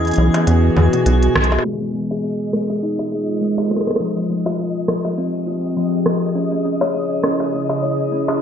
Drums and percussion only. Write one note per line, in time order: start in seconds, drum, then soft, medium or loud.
0.05 closed hi-hat soft
0.07 closed hi-hat soft
0.11 closed hi-hat soft
0.13 closed hi-hat soft
0.16 closed hi-hat soft
0.34 closed hi-hat soft
0.34 high bongo medium
0.47 closed hi-hat medium
0.77 low conga medium
0.93 closed hi-hat medium
1.06 closed hi-hat medium
1.23 closed hi-hat soft
1.36 cross-stick loud
1.36 low conga loud
1.44 closed hi-hat medium
1.52 high bongo medium
1.59 high bongo soft
1.65 high bongo soft
1.73 high bongo soft
2.11 high bongo medium
2.53 cross-stick loud
2.70 high bongo soft
2.99 high bongo medium
3.58 high bongo medium
3.71 cross-stick soft
3.76 cross-stick medium
3.81 cross-stick medium
3.87 cross-stick medium
3.90 cross-stick medium
3.96 cross-stick medium
4.46 high bongo medium
4.88 cross-stick loud
5.05 high bongo soft
6.06 cross-stick loud
6.81 high bongo medium
7.23 cross-stick loud
7.40 high bongo soft
7.69 high bongo medium
8.28 high bongo medium